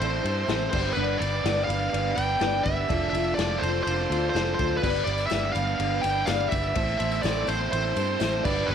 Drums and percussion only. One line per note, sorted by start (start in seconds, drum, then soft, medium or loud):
0.01 ride loud
0.25 ride medium
0.49 snare loud
0.49 ride medium
0.73 kick loud
0.73 crash loud
1.22 ride medium
1.46 snare loud
1.46 ride loud
1.70 ride medium
1.94 ride loud
2.17 ride medium
2.41 snare loud
2.41 ride loud
2.65 kick medium
2.65 ride medium
2.90 kick loud
2.90 ride loud
3.15 ride medium
3.39 snare loud
3.39 ride loud
3.63 ride medium
3.87 ride loud
4.12 ride medium
4.36 snare loud
4.36 ride loud
4.59 kick medium
4.59 ride medium
4.83 kick loud
4.83 tambourine soft
4.83 crash loud
4.95 tambourine soft
5.07 ride medium
5.18 tambourine medium
5.30 snare loud
5.30 ride loud
5.30 tambourine loud
5.55 ride medium
5.55 tambourine medium
5.67 tambourine soft
5.80 ride loud
6.03 ride medium
6.03 tambourine medium
6.27 snare loud
6.27 ride loud
6.27 tambourine loud
6.52 kick medium
6.52 ride medium
6.52 tambourine medium
6.75 kick loud
6.75 ride loud
6.75 tambourine soft
6.88 tambourine soft
7.00 ride medium
7.12 tambourine medium
7.23 snare loud
7.23 ride loud
7.23 tambourine medium
7.47 ride medium
7.47 tambourine medium
7.60 tambourine soft
7.73 ride loud
7.96 ride medium
7.96 tambourine medium
8.20 snare loud
8.20 ride medium
8.20 tambourine medium
8.45 kick loud
8.45 tambourine medium
8.45 crash loud
8.57 tambourine soft
8.69 tambourine soft